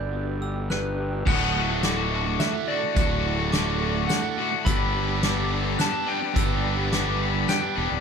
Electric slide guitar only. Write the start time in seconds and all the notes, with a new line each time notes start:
Already playing: D5
0.70 B4
1.27 F#5
2.40 E5
2.68 D5
4.07 F#5
4.65 B5
5.81 A5
6.08 G5
7.49 G5